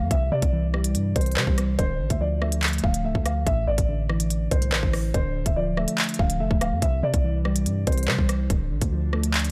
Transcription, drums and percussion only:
0.11 kick, closed hi-hat
0.42 kick, closed hi-hat
0.74 cross-stick
0.84 closed hi-hat
0.95 closed hi-hat
1.16 kick, closed hi-hat
1.21 closed hi-hat
1.26 closed hi-hat
1.31 closed hi-hat
1.37 clap
1.47 kick
1.58 cross-stick, closed hi-hat
1.79 kick, closed hi-hat
2.10 kick, closed hi-hat
2.42 cross-stick
2.52 closed hi-hat
2.63 clap, closed hi-hat
2.68 closed hi-hat
2.73 closed hi-hat
2.78 closed hi-hat
2.84 kick
2.94 closed hi-hat
3.15 kick
3.26 cross-stick, closed hi-hat
3.47 kick, closed hi-hat
3.78 kick, closed hi-hat
4.10 cross-stick
4.20 closed hi-hat
4.30 closed hi-hat
4.51 kick, closed hi-hat
4.62 closed hi-hat
4.72 clap
4.83 kick
4.93 cross-stick, open hi-hat
5.14 kick, closed hi-hat
5.46 kick, closed hi-hat
5.77 cross-stick
5.88 closed hi-hat
5.98 clap, closed hi-hat
6.04 closed hi-hat
6.09 closed hi-hat
6.14 closed hi-hat
6.19 kick
6.30 closed hi-hat
6.51 kick
6.61 cross-stick, closed hi-hat
6.82 kick, closed hi-hat
7.14 kick, closed hi-hat
7.45 cross-stick
7.56 closed hi-hat
7.66 closed hi-hat
7.87 kick, closed hi-hat
7.92 closed hi-hat
7.98 closed hi-hat
8.03 closed hi-hat
8.08 clap
8.19 kick
8.29 cross-stick, closed hi-hat
8.50 kick, closed hi-hat
8.81 kick, closed hi-hat
9.13 cross-stick
9.23 closed hi-hat
9.34 clap, closed hi-hat
9.39 closed hi-hat
9.44 closed hi-hat

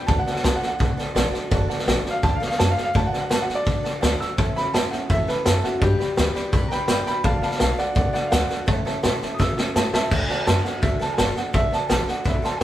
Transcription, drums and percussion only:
0.08 kick, snare
0.26 snare
0.35 snare
0.44 snare, hi-hat pedal
0.62 snare
0.80 kick, snare
0.98 snare
1.16 snare, hi-hat pedal
1.34 snare
1.52 kick, snare
1.70 snare
1.78 snare
1.88 snare, hi-hat pedal
2.06 snare
2.23 kick, snare
2.41 snare
2.50 snare
2.60 snare, hi-hat pedal
2.77 snare
2.95 kick, snare
3.13 snare
3.31 snare, hi-hat pedal
3.49 snare
3.67 kick, snare
3.84 snare
4.03 snare, hi-hat pedal
4.21 snare
4.38 kick, snare
4.57 snare
4.74 snare, hi-hat pedal
4.92 snare
5.10 kick, snare
5.28 snare
5.46 snare, hi-hat pedal
5.64 snare
5.82 kick, snare
6.00 snare
6.17 snare, hi-hat pedal
6.35 snare
6.53 kick, snare
6.71 snare
6.88 snare, hi-hat pedal
7.06 snare
7.24 kick, snare
7.42 snare
7.51 snare
7.60 snare, hi-hat pedal
7.78 snare
7.96 kick, snare
8.14 snare
8.32 snare, hi-hat pedal
8.50 snare
8.68 kick, snare
8.86 snare
9.03 snare, hi-hat pedal
9.22 snare
9.40 kick, snare
9.58 snare
9.76 snare, hi-hat pedal
9.94 snare
10.11 kick, snare, crash
10.29 snare
10.47 snare, hi-hat pedal
10.65 snare
10.83 kick, snare
11.00 snare
11.18 snare, hi-hat pedal
11.36 snare
11.54 kick, snare
11.72 snare
11.90 snare, hi-hat pedal
12.08 snare
12.25 kick, snare
12.44 snare

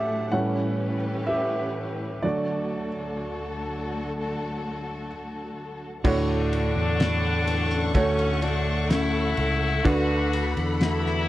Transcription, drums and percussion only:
6.05 kick, crash
6.53 ride
7.00 snare, ride
7.47 ride
7.95 kick, ride
8.19 ride
8.42 ride
8.90 snare, ride
9.37 ride
9.85 kick, ride
10.33 ride
10.57 ride
10.81 snare, ride
11.06 snare

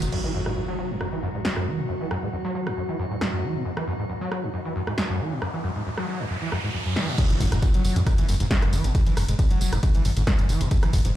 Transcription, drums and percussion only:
0.02 closed hi-hat, tambourine
0.12 crash
0.46 cross-stick
1.01 cross-stick
1.45 snare
1.56 cross-stick
2.11 cross-stick
2.67 cross-stick
3.21 cross-stick, snare
3.77 cross-stick
4.32 cross-stick
4.87 cross-stick
4.98 snare
5.42 cross-stick
5.98 cross-stick
6.52 cross-stick
6.96 snare
7.18 kick, closed hi-hat, ride, tambourine, crash
7.30 closed hi-hat, tambourine
7.40 kick, open hi-hat, tambourine
7.52 cross-stick, closed hi-hat, tambourine
7.62 kick, closed hi-hat, ride, tambourine
7.74 closed hi-hat, tambourine
7.85 open hi-hat, tambourine
7.96 closed hi-hat, tambourine
8.07 kick, cross-stick, closed hi-hat, ride, tambourine
8.18 closed hi-hat, tambourine
8.29 open hi-hat, tambourine
8.40 closed hi-hat, tambourine
8.51 kick, snare, closed hi-hat, ride, tambourine
8.62 cross-stick, closed hi-hat, tambourine
8.73 open hi-hat, tambourine
8.84 closed hi-hat, tambourine
8.95 kick, closed hi-hat, ride, tambourine
9.06 closed hi-hat, tambourine
9.17 cross-stick, open hi-hat, tambourine
9.28 closed hi-hat, tambourine
9.39 kick, closed hi-hat, ride, tambourine
9.51 closed hi-hat
9.61 open hi-hat, tambourine
9.73 cross-stick, closed hi-hat, tambourine
9.83 kick, closed hi-hat, ride, tambourine
9.95 closed hi-hat, tambourine
10.05 open hi-hat, tambourine
10.17 closed hi-hat, tambourine
10.27 kick, cross-stick, snare, closed hi-hat, ride, tambourine
10.39 closed hi-hat, tambourine
10.49 open hi-hat, tambourine
10.61 closed hi-hat, tambourine
10.71 kick, closed hi-hat, ride, tambourine
10.83 cross-stick, closed hi-hat, tambourine
10.93 kick, open hi-hat, tambourine
11.05 closed hi-hat, tambourine

